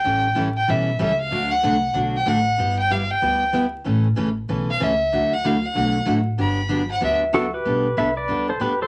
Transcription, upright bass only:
X:1
M:4/4
L:1/8
Q:"Swing" 1/4=189
K:G
V:1 name="Upright bass" clef=bass
A,,,2 A,,,2 B,,,2 ^C,,2 | D,,2 C,,2 B,,,2 A,,,2 | G,,,4 D,,4 | A,,,2 A,,,2 B,,,2 ^C,,2 |
D,,4 B,,,2 A,,,2 | G,,,4 D,,4 | B,,,2 C,,2 D,,2 E,,2 |]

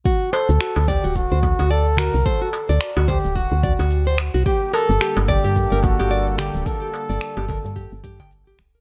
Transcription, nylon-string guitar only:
X:1
M:4/4
L:1/16
Q:"Swing 16ths" 1/4=109
K:Dphr
V:1 name="Nylon-string guitar"
^F2 c z F z d F z c z F d z F z | c ^F z d2 F c z F2 d F2 c z F | G2 B z G z d G z B z G d z G z | B G z d2 G B z G z G g z G z B |]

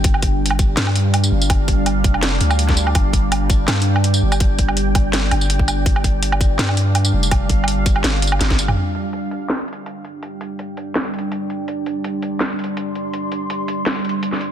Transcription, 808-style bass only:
X:1
M:4/4
L:1/8
Q:"Swing 16ths" 1/4=165
K:Cm
V:1 name="808-style bass" clef=bass
G,,,4 G,,3 G,,,- | G,,,3 F,,,2 D,,3 | G,,,4 G,,3 G,,,- | G,,,4- G,,, G,,,3 |
G,,,4 G,,3 F,,,- | F,,, G,,,3 G,,,2 G,,,2 | z8 | z8 |
z8 | z8 |]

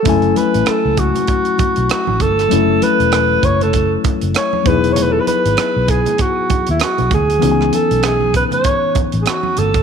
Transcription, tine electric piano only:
X:1
M:4/4
L:1/8
Q:"Swing 16ths" 1/4=98
K:F#dor
V:1 name="Tine electric piano"
[F,A,CEg]8 | [F,A,CEA]6- [F,A,CEA] [F,B,DEG]- | [F,B,DEG]6- [F,B,DEG] z | [E,B,CDFg]8 |]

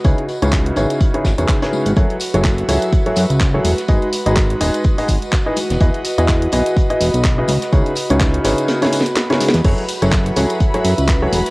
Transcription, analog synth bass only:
X:1
M:4/4
L:1/16
Q:"Swing 16ths" 1/4=125
K:F#dor
V:1 name="Analog synth bass" clef=bass
C,, z2 C,,3 G,,, z3 G,,, E,, z3 G,,, | F,,, z2 F,,,3 C,, z3 F,, C,,3 E,,, z | G,,, z2 G,,,3 D,,, z3 G,,, z4 E,,, | E,, z2 E,,3 B,,, z3 E,,, B,,,3 C,, z |
C,, z2 C,,3 G,,, z8 E,, | F,,, z2 F,,,3 C,, z3 F,, C,,3 E,,, z |]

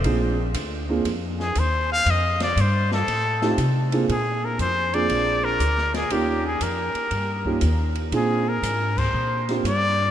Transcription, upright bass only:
X:1
M:4/4
L:1/8
Q:"Swing" 1/4=119
K:Bbmix
V:1 name="Upright bass" clef=bass
B,,,2 D,,2 F,,2 E,,2 | F,,2 G,,2 =A,,2 C,2 | B,,2 F,,2 B,,,2 D,,2 | E,,2 F,, z G,,2 E,,2 |
B,,2 A,,2 B,,2 G,,2 |]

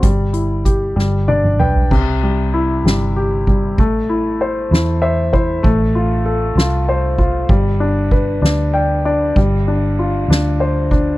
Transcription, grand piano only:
X:1
M:6/8
L:1/8
Q:3/8=64
K:C
V:1 name="Grand piano"
G, E G G, [Dd] [Bg] | C, G, E G, G G, | A, E c E [ce] [Ec] | A, F A F c F |
G, D B D [dg] [Dd] | G, D F D c D |]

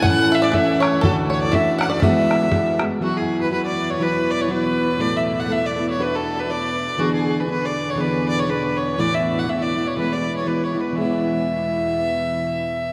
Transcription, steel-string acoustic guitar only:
X:1
M:2/4
L:1/8
Q:"Swing" 1/4=120
K:Emix
V:1 name="Steel-string acoustic guitar"
[A,,E,A,CE]2 [E,A,CE]2 | [D,,A,,E,A,DF]2 [E,A,DF]2 | [E,G,B,F]2 [E,G,B,F] [G,B,F] | [E,F,B,EF]2 [F,B,EF]2 |
[E,F,B,EF]2 [F,B,EF]2 | [A,,A,B,EA]2 [A,B,EA] [B,EA] | [B,DFB]2 [B,DFB]2 | [D,E,B,DG]2 [D,B,DG]2 |
[D,E,B,DG]2 [D,B,DG]2 | [A,,E,A,B,E]2 [E,A,B,E] [A,B,E] | [E,G,B,E]2 [E,G,B,E] [G,B,E] | [E,G,B,E]4- |
[E,G,B,E]4 |]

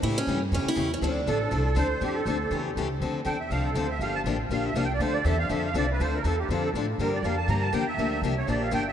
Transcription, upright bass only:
X:1
M:4/4
L:1/8
Q:"Swing" 1/4=241
K:Dm
V:1 name="Upright bass" clef=bass
A,,2 G,,2 F,, z E,,2 | D,,2 A,,,2 C,,2 D,,2 | F,,2 D,,2 E,,2 ^C,,2 | D,,2 E,,2 C,,2 D,,2 |
G,,,2 A,,,2 B,,,2 C,,2 | D,,2 E,,2 F,,2 C,,2 | D,,2 E,,2 F,,2 A,,2 | G,,2 F,,2 G,,2 E,,2 |
D,,2 C,,2 B,,,2 G,,,2 |]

